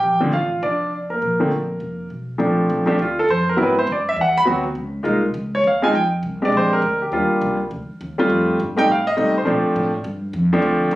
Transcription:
0.00 0.30 A#1 medium
0.00 0.21 G4 medium
0.00 0.19 G5 medium
0.20 0.31 D3 medium
0.20 0.31 F3 medium
0.20 0.31 A3 medium
0.20 0.31 C4 medium
0.33 0.60 A1 medium
0.33 0.62 F4 medium
0.33 0.61 F5 medium
0.63 1.19 F1 medium
0.63 0.92 D4 medium
0.63 0.90 D5 medium
1.10 2.08 A#3 soft
1.10 2.06 A#4 medium
1.22 1.78 A#1 medium
1.40 1.50 D3 medium
1.40 1.50 F3 medium
1.40 1.50 A3 medium
1.40 1.50 C4 medium
1.80 2.08 F1 medium
2.10 2.38 B1 medium
2.38 2.68 A#1 medium
2.38 2.83 F3 medium
2.38 2.83 A3 medium
2.38 2.83 C4 soft
2.38 2.83 D4 medium
2.69 2.98 A#1 medium
2.86 2.97 F3 medium
2.86 2.97 A3 medium
2.86 2.97 C4 medium
2.86 2.97 D4 medium
2.86 3.00 G4 medium
2.99 3.27 D2 medium
2.99 3.18 F4 medium
3.19 3.29 A4 medium
3.29 3.57 F2 medium
3.29 3.47 C5 medium
3.49 3.59 A#4 medium
3.56 3.86 G#2 medium
3.56 3.73 F#3 medium
3.56 3.74 B3 medium
3.56 3.74 C4 medium
3.56 3.74 E4 medium
3.63 3.78 B4 medium
3.79 3.88 C5 medium
3.87 4.16 F#2 medium
3.92 4.07 D5 medium
4.09 4.18 E5 medium
4.16 4.45 E2 medium
4.21 4.37 F#5 medium
4.37 4.43 B5 loud
4.45 4.75 D2 medium
4.45 4.62 F#3 medium
4.45 4.62 B3 medium
4.45 4.63 C4 medium
4.45 4.63 F#4 medium
4.75 5.04 C#2 medium
5.03 5.33 C2 medium
5.03 5.20 G#3 medium
5.03 5.20 A#3 medium
5.03 5.21 D#4 medium
5.03 5.21 F4 medium
5.34 5.63 C#2 medium
5.55 5.65 C#5 medium
5.64 5.93 D#2 medium
5.64 5.83 F5 medium
5.82 5.92 G#3 medium
5.82 5.92 C4 medium
5.82 5.93 D#4 medium
5.82 5.93 F4 medium
5.82 5.94 G#5 medium
5.93 6.22 F2 medium
5.93 6.05 G5 medium
6.23 6.51 C2 medium
6.42 6.80 G#3 medium
6.42 6.80 C4 medium
6.42 6.80 D4 medium
6.42 6.80 G4 medium
6.42 6.54 D5 medium
6.52 6.81 A#1 medium
6.57 6.72 C5 medium
6.73 6.99 A#4 medium
6.82 7.11 D2 medium
7.02 7.12 G4 medium
7.12 7.28 D#2 medium
7.12 7.56 G3 medium
7.12 7.56 A#3 medium
7.12 7.56 D4 medium
7.12 7.56 F4 medium
7.30 muted upright bass stroke soft
7.41 7.70 C2 medium
7.71 7.87 D2 medium
7.90 muted upright bass stroke soft
8.01 8.29 D#2 medium
8.18 8.56 G3 medium
8.18 8.57 A3 medium
8.18 8.57 C4 medium
8.18 8.57 F4 medium
8.30 8.58 F2 medium
8.60 8.88 G2 medium
8.76 8.87 G3 medium
8.76 8.87 A3 medium
8.76 8.87 C4 medium
8.76 8.87 D#4 medium
8.76 8.89 G5 loud
8.89 9.17 A2 medium
8.89 9.07 F5 medium
9.07 9.34 D#5 medium
9.17 9.46 C3 medium
9.17 9.33 G3 medium
9.17 9.33 A3 medium
9.17 9.33 C4 medium
9.17 9.34 D#4 medium
9.38 9.48 C5 medium
9.45 9.64 A#2 medium
9.45 9.90 F3 medium
9.45 9.90 A3 medium
9.45 9.90 C4 medium
9.45 9.90 D4 medium
9.65 muted upright bass stroke soft
9.76 10.04 A2 loud
10.04 10.33 G2 medium
10.33 10.61 F2 medium
10.53 10.91 F3 medium
10.53 10.91 A3 medium
10.53 10.91 C4 medium
10.53 10.92 D4 medium
10.62 10.91 D2 medium
10.91 10.95 C2 medium

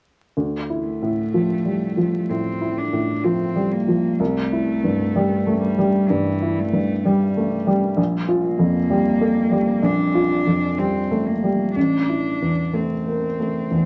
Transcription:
0.37 2.25 D2 soft
0.70 1.21 E4 soft
0.86 2.31 A3 medium
1.02 1.53 A2 soft
1.34 1.85 F3 soft
1.65 1.98 G3 soft
1.97 2.48 F3 soft
2.29 2.80 A2 soft
2.29 2.79 C4 medium
2.61 3.12 E4 soft
2.78 3.25 D4 soft
2.93 3.43 A2 soft
3.24 3.75 F3 soft
3.24 3.73 C4 soft
3.56 3.88 G3 soft
3.72 4.20 A#3 soft
3.88 4.20 F3 soft
4.19 6.06 C2 soft
4.19 5.60 A3 medium
4.52 5.03 E4 soft
4.84 5.34 G2 soft
5.16 5.66 G3 soft
5.47 5.78 A3 soft
5.60 6.10 G3 medium
5.78 6.29 G3 soft
6.09 6.60 G2 soft
6.09 6.60 E3 medium
6.42 6.92 E4 soft
6.58 7.07 A3 medium
6.73 7.23 G2 soft
7.05 7.55 G3 soft
7.05 7.99 G3 medium
7.37 7.68 A3 soft
7.67 7.98 G3 soft
7.97 9.79 A#1 soft
8.28 8.78 F4 soft
8.45 9.86 A#3 medium
8.59 9.09 F2 soft
8.90 9.40 G3 soft
9.21 9.53 A4 soft
9.51 10.02 G3 soft
9.82 11.71 A#1 soft
9.82 10.79 D4 medium
10.15 10.66 F4 soft
10.47 10.98 F2 soft
10.78 11.30 G3 soft
10.78 11.27 C4 soft
11.11 11.43 A3 soft
11.26 11.74 A#3 soft
11.43 11.76 G3 soft
11.75 13.67 A1 soft
11.75 12.76 D4 soft
12.09 12.61 E4 soft
12.42 12.94 E2 soft
12.73 13.25 A3 soft
12.73 13.86 C4 soft
13.07 13.39 A#3 soft
13.40 13.86 A3 soft
13.71 13.86 E2 soft

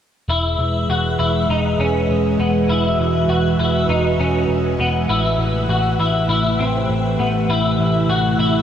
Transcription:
0.29 0.55 E1 medium
0.29 5.06 E3 medium
0.29 5.06 G#3 medium
0.29 0.89 E4 medium
0.29 2.67 G#4 medium
0.29 7.46 B4 medium
0.59 0.85 E1 medium
0.89 1.16 E1 medium
0.89 1.19 F#4 medium
1.19 1.46 E1 medium
1.19 1.49 E4 medium
1.49 1.75 E1 medium
1.49 1.79 D#4 medium
1.79 2.05 E1 medium
1.79 2.39 C#4 medium
2.09 2.36 E1 medium
2.39 2.66 E1 medium
2.39 2.69 B3 medium
2.68 2.95 E1 medium
2.68 3.29 E4 medium
2.68 5.07 F#4 medium
2.99 3.25 E1 medium
3.28 3.55 E1 medium
3.28 3.59 F#4 medium
3.59 3.85 E1 medium
3.59 3.89 E4 medium
3.88 4.15 E1 medium
3.88 4.19 D#4 medium
4.19 4.45 E1 medium
4.19 4.79 C#4 medium
4.49 4.75 E1 medium
4.79 5.06 E1 medium
4.79 5.09 B3 medium
5.09 5.36 A1 medium
5.09 8.62 C3 medium
5.09 8.62 E3 medium
5.09 8.62 A3 medium
5.09 5.69 E4 medium
5.38 5.65 A1 medium
5.69 5.96 A1 medium
5.69 5.99 F#4 medium
5.99 6.26 A1 medium
5.99 6.28 E4 medium
6.29 6.55 A1 loud
6.29 6.59 E4 medium
6.59 6.86 A1 medium
6.59 7.19 C4 medium
6.89 7.16 A1 medium
7.19 7.46 A1 medium
7.19 7.49 B3 medium
7.49 7.76 A1 medium
7.49 8.62 E4 medium
7.49 8.09 E4 medium
7.79 8.06 A1 medium
8.09 8.36 A1 medium
8.09 8.39 F#4 medium
8.39 8.62 A1 medium
8.39 8.62 E4 medium

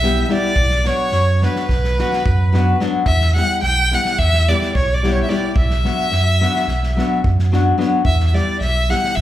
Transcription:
0.00 0.24 B1 loud
0.00 0.25 G3 medium
0.00 0.26 B3 medium
0.00 0.26 E4 medium
0.00 0.22 E5 loud
0.00 0.25 E5 loud
0.00 snare soft
0.04 0.26 G4 loud
0.24 0.30 E5 medium
0.24 0.34 E5 medium
0.28 0.51 G3 medium
0.28 0.52 B3 medium
0.28 0.52 E4 medium
0.28 0.52 G4 loud
0.28 0.87 D5 medium
0.28 snare soft
0.32 0.88 D5 loud
0.56 0.90 B1 loud
0.56 kick medium
0.70 snare soft
0.84 1.08 F#3 medium
0.84 1.08 B3 medium
0.84 1.08 D4 medium
0.84 1.09 F#4 medium
0.84 1.45 C#5 loud
0.84 1.43 C#5 medium
0.84 snare soft
1.11 1.47 F#2 loud
1.11 snare soft
1.41 1.64 F#3 medium
1.41 1.65 B3 medium
1.41 1.65 D4 medium
1.41 1.65 F#4 medium
1.41 2.81 B4 medium
1.41 snare soft
1.56 snare soft
1.69 2.03 B1 medium
1.69 kick medium
1.69 snare soft
1.84 snare soft
1.98 2.21 F#3 medium
1.98 2.21 B3 medium
1.98 2.22 D4 medium
1.98 2.22 F#4 medium
1.98 snare soft
2.13 snare soft
2.26 2.74 F#2 loud
2.26 kick loud
2.53 2.75 F#3 medium
2.53 2.76 B3 loud
2.53 2.76 D4 loud
2.53 2.76 F#4 loud
2.53 snare soft
2.80 3.02 F#3 medium
2.80 3.03 B3 medium
2.80 3.03 D4 medium
2.80 3.03 F#4 loud
2.80 snare soft
3.05 3.40 E2 loud
3.05 3.33 E5 medium
3.05 3.34 E5 loud
3.05 kick medium
3.21 snare soft
3.35 3.58 G3 medium
3.35 3.59 B3 medium
3.35 3.59 E4 medium
3.35 3.59 G4 medium
3.35 3.60 F#5 loud
3.35 3.61 F#5 loud
3.35 snare soft
3.62 3.96 B1 loud
3.62 3.91 G5 medium
3.62 3.96 G5 loud
3.62 snare soft
3.91 4.14 G3 medium
3.91 4.15 B3 medium
3.91 4.15 E4 medium
3.91 4.15 G4 medium
3.91 4.19 F#5 medium
3.91 4.20 F#5 loud
3.91 snare soft
4.05 snare soft
4.18 4.53 E2 loud
4.18 4.50 E5 loud
4.18 4.49 E5 medium
4.18 kick medium
4.18 snare soft
4.33 snare soft
4.48 4.71 G3 medium
4.48 4.71 B3 medium
4.48 4.71 E4 medium
4.48 4.72 G4 medium
4.48 4.75 D5 loud
4.48 4.75 D5 medium
4.48 snare soft
4.62 snare soft
4.74 5.23 B1 loud
4.74 4.92 C#5 medium
4.74 4.96 C#5 medium
4.74 kick loud
4.94 5.13 D5 medium
4.94 5.12 D5 medium
5.03 5.25 G3 medium
5.03 5.25 B3 medium
5.03 5.26 E4 medium
5.03 5.26 G4 medium
5.03 snare soft
5.12 5.23 C#5 medium
5.12 5.31 C#5 medium
5.23 5.31 E5 medium
5.23 5.30 E5 medium
5.29 5.51 G3 medium
5.29 5.51 B3 medium
5.29 5.52 E4 medium
5.29 5.52 G4 medium
5.29 5.56 D5 medium
5.29 snare soft
5.55 5.89 B1 loud
5.55 7.21 E5 medium
5.55 7.21 E5 loud
5.55 kick loud
5.70 snare soft
5.84 6.07 F#3 medium
5.84 6.07 B3 medium
5.84 6.07 D4 soft
5.84 6.08 F#4 medium
5.84 snare soft
6.11 6.46 F#2 loud
6.11 snare soft
6.41 6.63 F#3 medium
6.41 6.64 B3 medium
6.41 6.64 D4 medium
6.41 6.65 F#4 medium
6.41 snare soft
6.56 snare soft
6.67 7.01 B1 medium
6.67 snare soft
6.83 snare soft
6.97 7.19 F#3 medium
6.97 7.20 B3 medium
6.97 7.20 D4 medium
6.97 7.21 F#4 medium
6.97 snare soft
7.24 7.73 F#2 loud
7.24 kick medium
7.39 snare soft
7.52 7.74 F#3 medium
7.52 7.74 B3 medium
7.52 7.75 D4 medium
7.52 7.75 F#4 loud
7.52 snare soft
7.78 8.00 F#3 medium
7.78 8.00 B3 medium
7.78 8.01 D4 medium
7.78 8.01 F#4 loud
7.78 snare soft
8.04 8.38 E2 loud
8.04 8.25 E5 medium
8.04 8.26 E5 loud
8.04 kick loud
8.20 snare soft
8.27 8.36 E5 medium
8.27 8.34 E5 medium
8.33 8.56 G3 medium
8.33 8.56 B3 medium
8.33 8.57 E4 medium
8.33 8.57 G4 medium
8.33 8.60 D5 medium
8.33 8.61 D5 medium
8.33 snare soft
8.60 8.94 B1 loud
8.60 8.91 E5 loud
8.60 8.89 E5 medium
8.60 snare soft
8.89 9.12 G3 medium
8.89 9.12 B3 medium
8.89 9.13 E4 medium
8.89 9.13 G4 medium
8.89 9.17 F#5 loud
8.89 9.17 F#5 medium
8.89 snare soft
9.04 snare soft
9.15 9.21 E2 medium
9.15 9.21 E5 loud
9.15 kick medium
9.15 snare soft

